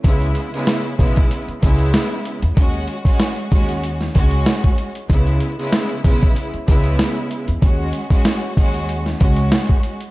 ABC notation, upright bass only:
X:1
M:4/4
L:1/16
Q:"Swing 16ths" 1/4=95
K:C#m
V:1 name="Upright bass" clef=bass
C,,2 z4 B,,,2 z2 C,,2 z3 E,, | D,,2 z4 D,,4 C,,2 z4 | C,,2 z4 B,,,2 z2 C,,2 z3 E,, | D,,2 z4 D,,4 C,,2 z4 |]